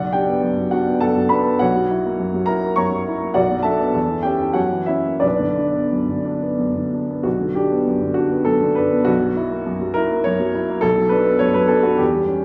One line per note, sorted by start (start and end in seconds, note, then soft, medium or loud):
0.00 1.54 B1 soft
0.00 0.23 F#3 soft
0.00 0.12 F#4 medium
0.00 0.12 D5 soft
0.00 0.13 F#5 medium
0.13 0.38 D4 soft
0.13 0.69 G4 soft
0.13 0.72 G5 medium
0.29 0.53 B3 soft
0.44 0.67 F#2 soft
0.58 0.82 F#3 soft
0.71 0.97 D4 soft
0.71 1.00 F#4 medium
0.71 1.00 F#5 medium
0.88 1.12 B3 soft
1.00 1.26 F#2 soft
1.00 1.30 A4 medium
1.00 1.29 F#5 medium
1.00 1.31 A5 medium
1.17 1.41 F#3 soft
1.29 1.55 D4 soft
1.29 1.59 B4 soft
1.29 1.60 B5 medium
1.47 1.62 B3 soft
1.59 3.34 B1 soft
1.59 2.45 F#4 medium
1.59 2.45 C#5 medium
1.59 2.49 F#5 medium
1.76 2.00 F#3 soft
1.91 2.15 E4 soft
2.05 2.29 A#3 soft
2.20 2.44 F#2 soft
2.34 2.58 F#3 soft
2.46 2.73 E4 soft
2.46 2.76 A#4 medium
2.46 2.75 A#5 medium
2.63 2.88 A#3 soft
2.76 3.02 F#2 soft
2.76 3.32 C#5 medium
2.76 3.32 A#5 medium
2.76 3.36 C#6 medium
2.93 3.17 F#3 soft
3.08 3.31 E4 soft
3.22 3.37 A#3 soft
3.34 3.93 B1 medium
3.34 3.63 F#4 medium
3.34 3.63 D5 medium
3.34 3.65 F#5 medium
3.52 3.75 F#3 soft
3.63 3.89 D4 soft
3.63 4.21 A4 medium
3.63 4.21 E5 medium
3.63 4.24 A5 medium
3.80 3.95 B3 soft
3.94 4.55 E2 soft
4.08 4.34 E3 soft
4.23 4.51 C#4 soft
4.23 4.54 G4 soft
4.23 4.56 G5 medium
4.41 4.57 E3 soft
4.53 5.21 F#2 soft
4.53 4.86 F#4 soft
4.53 4.86 C#5 soft
4.53 4.88 F#5 medium
4.71 4.99 E3 soft
4.86 5.16 C#4 soft
4.86 5.20 E4 soft
4.86 5.22 E5 medium
5.05 5.23 A#3 soft
5.20 7.21 B1 soft
5.20 5.57 D4 soft
5.20 6.87 B4 soft
5.20 6.90 D5 medium
5.40 5.68 D3 soft
5.58 5.85 D4 soft
5.75 6.02 B3 soft
5.92 6.19 F#2 soft
6.09 6.35 D3 soft
6.25 6.52 D4 soft
6.42 6.69 B3 soft
6.59 6.86 F#2 soft
6.76 7.03 D3 soft
6.93 7.19 D4 soft
7.10 7.26 B3 soft
7.23 9.04 B1 soft
7.23 7.56 F#4 medium
7.41 7.66 D3 soft
7.55 7.81 D4 soft
7.55 8.16 G4 medium
7.72 7.96 B3 soft
7.87 8.11 F#2 soft
8.02 8.26 D3 soft
8.14 8.41 D4 soft
8.14 8.46 F#4 medium
8.32 8.56 B3 soft
8.45 8.71 F#2 soft
8.45 8.76 A4 medium
8.63 8.87 D3 soft
8.75 9.02 D4 soft
8.75 9.06 B4 medium
8.92 9.08 B3 soft
9.05 10.79 B1 medium
9.05 9.95 F#4 medium
9.21 9.46 F#3 soft
9.37 9.61 E4 soft
9.51 9.75 A#3 soft
9.66 9.91 F#2 soft
9.81 10.05 F#3 soft
9.94 10.20 E4 soft
9.94 10.25 A#4 medium
10.11 10.35 A#3 soft
10.24 10.50 F#2 soft
10.24 10.83 C#5 medium
10.40 10.63 F#3 soft
10.55 10.78 E4 soft
10.69 10.84 A#3 soft
10.81 11.97 B1 medium
10.81 11.11 A4 medium
10.98 11.21 F#3 soft
11.09 11.35 D4 soft
11.09 11.40 B4 medium
11.26 11.50 B3 soft
11.39 11.65 F#2 soft
11.39 11.55 C#5 medium
11.54 11.80 F#3 soft
11.54 11.70 B4 medium
11.68 11.94 D4 soft
11.68 11.84 A4 medium
11.83 12.00 B3 soft
11.83 11.99 F#4 medium
11.97 12.45 E2 soft
11.97 12.45 G4 medium
12.14 12.39 G3 soft
12.28 12.45 C#4 soft